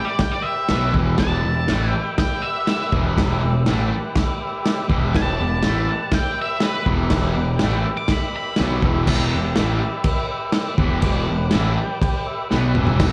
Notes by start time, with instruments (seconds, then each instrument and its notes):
Already playing: transistor combo organ G4 B4 G5
0.05 lead electric guitar D5
0.18 transistor combo organ G4 B4 G5, lead electric guitar G5, kick, snare, crash
0.32 lead electric guitar D5
0.42 transistor combo organ G4 B4 G5, lead electric guitar E5
0.69 picked electric bass B1, distorted electric guitar B2 F#3, transistor combo organ G4 B4 E5, snare, crash
0.73 distorted electric guitar B3
0.94 picked electric bass E1, distorted electric guitar E2 B2 E3, transistor combo organ G4 B4 E5, kick
1.18 picked electric bass E1, distorted electric guitar E2 B2 E3, transistor combo organ G4, lead electric guitar A5, kick, snare, crash
1.22 transistor combo organ B4 F#5
1.44 picked electric bass E1, distorted electric guitar E2 B2, transistor combo organ G4 B4 E5
1.68 picked electric bass A1, distorted electric guitar A2 E3 A3, transistor combo organ G4 B4 E5, snare, crash
1.89 transistor combo organ G4 B4 E5, lead electric guitar G5
2.18 transistor combo organ G4 B4 E5, lead electric guitar G5, kick, snare, crash
2.42 transistor combo organ G4 B4 F#5, lead electric guitar E5
2.67 transistor combo organ G4 B4 F#5, lead electric guitar E5, snare, crash
2.92 picked electric bass E1, distorted electric guitar E2 B2 E3, transistor combo organ G4 B4 E5, kick
3.16 picked electric bass E1, distorted electric guitar E2 B2 E3, transistor combo organ G4 B4 E5, kick, snare, crash
3.39 distorted electric guitar E2 B2, transistor combo organ G4 B4 E5
3.44 picked electric bass E1
3.66 picked electric bass A1, distorted electric guitar A2 E3, transistor combo organ G4 B4 E5, snare, crash
3.70 distorted electric guitar A3
3.92 transistor combo organ G4 B4 F#5
4.15 transistor combo organ G4 B4 E5, kick, snare, crash
4.40 transistor combo organ G4 B4 E5
4.62 transistor combo organ G4 B4 E5, snare, crash
4.89 picked electric bass E1, distorted electric guitar E2 B2 E3, transistor combo organ G4 B4 E5, kick
5.11 picked electric bass E1, transistor combo organ G4 B4 G5, kick
5.15 distorted electric guitar E2 B2 E3, lead electric guitar A5, snare, crash
5.38 picked electric bass E1, distorted electric guitar E2 B2, transistor combo organ G4 B4 D5
5.62 picked electric bass A1, distorted electric guitar A2 E3 A3, transistor combo organ G4 B4 E5, snare, crash
5.88 transistor combo organ G4 B4 F#5
6.12 transistor combo organ G4 B4 E5, lead electric guitar G5, kick, snare, crash
6.37 transistor combo organ G4 B4 E5
6.42 lead electric guitar E5
6.59 transistor combo organ G4 B4 E5, lead electric guitar B4, snare, crash
6.85 picked electric bass E1, distorted electric guitar E2 B2, transistor combo organ G4 B4 E5, kick
6.89 distorted electric guitar E3
7.07 picked electric bass E1, distorted electric guitar E2 B2, transistor combo organ G4 B4 E5, kick, snare, crash
7.12 distorted electric guitar E3
7.31 transistor combo organ G4 B4 F#5
7.36 picked electric bass E1, distorted electric guitar E2 B2
7.54 transistor combo organ G4 B4 G5
7.59 picked electric bass A1, distorted electric guitar A2 E3 A3, snare, crash
7.83 transistor combo organ G4 B4 E5
7.97 lead electric guitar D6
8.08 transistor combo organ G4 B4, lead electric guitar B5, kick, snare, crash
8.12 transistor combo organ E5
8.32 transistor combo organ G4 B4 E5
8.36 lead electric guitar B5
8.56 picked electric bass B1, distorted electric guitar B2 F#3, transistor combo organ G4 B4 E5, snare, crash
8.61 distorted electric guitar B3
8.82 picked electric bass E1, distorted electric guitar E2 B2 E3, transistor combo organ G4 B4 E5, kick
9.05 picked electric bass E1, distorted electric guitar E2 B2 E3, transistor combo organ G4 B4 E5, kick, crash
9.31 picked electric bass E1, distorted electric guitar E2 B2, transistor combo organ G4 B4 E5
9.55 picked electric bass A1, distorted electric guitar A2 E3 A3, transistor combo organ G4 B4 E5, snare, crash
9.78 transistor combo organ G4 B4 E5
10.02 transistor combo organ G4 B4 E5, kick, crash
10.29 transistor combo organ G4 B4 E5
10.51 transistor combo organ G4 B4 E5, snare, crash
10.77 picked electric bass E1, distorted electric guitar E2 B2 E3, transistor combo organ G4 B4 F#5, kick
11.01 picked electric bass E1, distorted electric guitar E2 B2 E3, transistor combo organ G4 B4 D5, kick, crash
11.27 picked electric bass E1, distorted electric guitar E2 B2, transistor combo organ G4 B4 F#5
11.51 picked electric bass A1, distorted electric guitar A2 E3 A3, transistor combo organ G4 B4 E5, snare, crash
11.76 transistor combo organ G4 B4 G5
12.01 transistor combo organ G4 B4 G5, kick, crash
12.25 transistor combo organ G4 B4 E5
12.49 picked electric bass B1, distorted electric guitar B2 F#3, transistor combo organ G4 B4 F#5, snare
12.53 distorted electric guitar B3
12.75 picked electric bass E1, distorted electric guitar E2 B2, transistor combo organ G4 B4, mid tom
12.79 distorted electric guitar E3, transistor combo organ E5
12.87 floor tom
12.99 picked electric bass E1, distorted electric guitar E2 B2, transistor combo organ G4 B4 E5, kick, snare, crash
13.04 distorted electric guitar E3